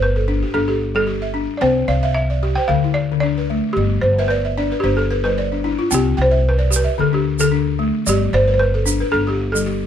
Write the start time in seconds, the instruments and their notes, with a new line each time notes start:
Already playing: upright bass G1, balafon B4 C5
0.02 balafon B4
0.16 balafon A4
0.28 balafon D4
0.42 balafon G4
0.54 upright bass G1, balafon D4 A4
0.68 balafon G4 A4
0.95 balafon G3 A4
1.07 balafon G4
1.22 balafon E5
1.34 balafon D4
1.57 balafon C4 D5 G5
1.62 upright bass C2, balafon C5
1.88 upright bass C2, balafon D5 F5
2.03 balafon E5 F5
2.14 balafon E5
2.30 balafon D5
2.43 balafon G4
2.55 balafon C5 G5
2.68 upright bass D2, balafon D3 F5
2.84 balafon E4
2.94 balafon D5
3.12 balafon D3
3.20 balafon D4 D5
3.38 balafon B4
3.50 balafon A3
3.73 upright bass G1, balafon G4
3.77 balafon G3
4.01 upright bass G1, balafon C5
4.19 balafon B4 E5
4.28 balafon B4 D5
4.45 balafon E5
4.58 balafon D4 D5
4.72 balafon B4
4.80 upright bass G1, balafon D4 G4 C5
4.97 balafon A4
5.11 balafon B4
5.24 balafon G3 B4 C5
5.38 balafon D5
5.52 balafon D4
5.64 balafon D4 E4
5.79 balafon F4
5.91 upright bass C2, balafon C4 G4 G5, shaker
6.17 upright bass C2, balafon G5
6.22 balafon C5
6.31 balafon E5
6.49 balafon B4
6.59 balafon D5
6.70 balafon G4, shaker
6.76 balafon B4
6.84 balafon E5
6.98 upright bass D2, balafon D3 A4
7.13 balafon D4 G4
7.39 balafon D3 A4, shaker
7.52 balafon D4
7.79 balafon A3
8.07 upright bass G1, balafon G3 G4 D5, shaker
8.33 upright bass G1, balafon C5 D5
8.48 balafon B4
8.54 balafon C5
8.59 balafon B4
8.74 balafon A4
8.86 balafon D4, shaker
9.00 balafon B4
9.12 upright bass G1, balafon D4 A4
9.27 balafon G4
9.52 balafon G3 A4, shaker
9.66 balafon G4